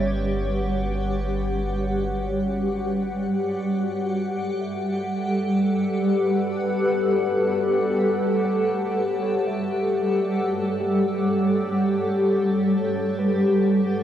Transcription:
Already playing: G1 G3 G4 B4 C#5 F#5
3.28 G3
3.93 A4
4.11 B4
4.35 D5
4.61 E5
5.20 B4
8.44 C#5
9.22 C#5
9.47 E5
9.96 C#5
10.81 G4
13.19 B4

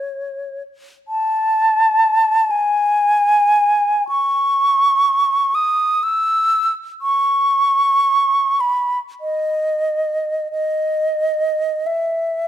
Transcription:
Already playing: C#5
1.08 A5
2.51 G#5
4.09 C#6
5.55 D#6
6.03 E6
7.02 C#6
8.60 B5
9.21 D#5
10.52 D#5
11.86 E5

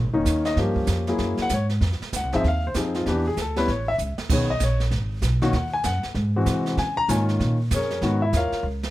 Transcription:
0.04 G#1
0.13 F1 D#3 A#3 C#4 D#4
0.25 D#2, kick, snare, hi-hat pedal
0.45 D#5, snare
0.56 G2 F3 A#3 C#4 G4 A#4, brush sweep, kick, snare
0.76 kick
0.87 F2, kick, snare, hi-hat pedal
1.07 F#3 A#3 E4 G#4, snare
1.18 F#2, brush sweep, kick, snare
1.37 muted upright bass stroke, snare
1.42 F#5
1.49 G#2, kick, snare, hi-hat pedal
1.54 C#5
1.69 snare
1.81 F2, brush sweep, kick, snare
1.92 snare
2.00 muted upright bass stroke, snare
2.13 C#2 F#5, kick, snare, hi-hat pedal
2.23 C2
2.32 G#1 F3 C4 D#4 G#4 E5, snare
2.43 D#2, brush sweep, kick, snare
2.48 F5
2.67 C5
2.74 F2 F3 C4 D#4 G4 G#4, kick, snare, hi-hat pedal
2.94 F4, snare
3.06 E2 E3 B3 D4 G4, brush sweep, kick, snare
3.27 G#4
3.37 D2, kick, snare, hi-hat pedal
3.41 A4
3.56 G3 B3 C#4 E4 B4, snare
3.67 A1 C#5, brush sweep, kick, snare
3.88 E5
3.98 C#2, hi-hat pedal
4.18 muted upright bass stroke, snare
4.29 B1 D#3 B3 C#4 G#4, brush sweep, kick, snare, crash
4.33 C#5
4.50 D#5
4.60 A#1 C#5, kick, snare, hi-hat pedal
4.80 snare
4.91 G#1, brush sweep, kick, snare
5.22 B1, kick, snare, hi-hat pedal
5.42 D#3 A#3 C#4 F#4, snare
5.53 D#2 F#5, brush sweep, kick, snare
5.74 G#5
5.84 F#2 F#5, kick, snare, hi-hat pedal
6.03 muted upright bass stroke, snare
6.15 G#2, brush sweep, kick, snare
6.36 E3 G#3 C4 F#4
6.46 C3, kick, snare, hi-hat pedal
6.66 snare
6.77 C#3 G#5, brush sweep, kick, snare
6.97 A#5
7.08 G#2 D#3 A#3 C#4 F4 G#5, kick, snare, hi-hat pedal
7.29 snare
7.40 A#2, brush sweep, kick, snare
7.71 F2 C#5, kick, snare, hi-hat pedal
7.75 C#4 G#4 A#4
7.82 snare
7.90 snare
8.02 G#2 D#3 G#3 B3 F#4, brush sweep, kick, snare
8.22 E4 E5
8.33 D#2 A#4 C#5, kick, snare, hi-hat pedal
8.37 F4 F5
8.52 muted upright bass stroke, snare
8.63 C#2
8.83 snare

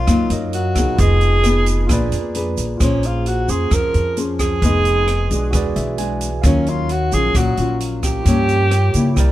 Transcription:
Already playing: F4 A#4 C#5 D#5
0.07 F#2 F#3 A#3 D#4 F4, kick, cross-stick, closed hi-hat, shaker
0.30 F#2 A#4 C#5 D#5 F5, closed hi-hat, shaker
0.53 F#4, closed hi-hat
0.75 B1 B3 D#4 G#4, kick, cross-stick, closed hi-hat, shaker
0.96 F1 F3 F4 G#4, kick, closed hi-hat, shaker
1.00 B4 D#5
1.21 closed hi-hat, shaker
1.44 B3 D#4 G#4, cross-stick, closed hi-hat, shaker
1.66 closed hi-hat, shaker
1.87 A#1 A#3 D4 F4 G#4 B4, kick, cross-stick, closed hi-hat, shaker
1.91 B4 D5
2.12 F2, closed hi-hat, shaker
2.35 D4 G#4 B4, closed hi-hat
2.57 A#1, closed hi-hat, shaker
2.77 A#1 A#3 C#4 F4 G#4, kick, cross-stick, closed hi-hat, shaker
2.82 C#4 C5
3.03 F4, closed hi-hat, shaker
3.26 F#4, closed hi-hat
3.48 F2 C#4 G#4 C5, closed hi-hat, shaker
3.71 F2 F3 A#4, kick, cross-stick, closed hi-hat, shaker
3.94 F2, closed hi-hat, shaker
4.17 C#4 G#4 C5, closed hi-hat, shaker
4.39 G#4, kick, cross-stick, closed hi-hat, shaker
4.62 F1 F3 B3 D#4 G#4 B4 D#5, kick, closed hi-hat, shaker
4.85 closed hi-hat, shaker
5.08 cross-stick, closed hi-hat
5.31 B1 G#3 D4 F#4, closed hi-hat, shaker
5.51 E1 E3 F#4 G#4, kick, cross-stick, closed hi-hat, shaker
5.55 B4 D5
5.76 B1 E5, closed hi-hat, shaker
5.98 G#3 D4 F#4 G#5, closed hi-hat
6.21 closed hi-hat, shaker
6.42 D#2 D#3 F#3 C#4 F4 A#4 F5, kick, cross-stick, closed hi-hat, shaker
6.46 C#4 C#5
6.67 F4, closed hi-hat, shaker
6.89 F#4, closed hi-hat
7.12 A#1 F#3 C#4 F4 G#4, closed hi-hat, shaker
7.35 A#1 A#2 F#4, kick, cross-stick, closed hi-hat, shaker
7.57 A#1 F#3 C#4 F4, closed hi-hat, shaker
7.80 closed hi-hat
8.03 G4, kick, cross-stick, closed hi-hat, shaker
8.23 G2 F3 F4 G4, kick, closed hi-hat, shaker
8.27 A#3 C#4 A#4 C#5
8.49 closed hi-hat, shaker
8.71 cross-stick, closed hi-hat
8.94 C#3 G3 A#3 E4, closed hi-hat, shaker
9.14 C2 C3 E4 G4, kick, cross-stick, closed hi-hat, shaker
9.18 A#4 D5

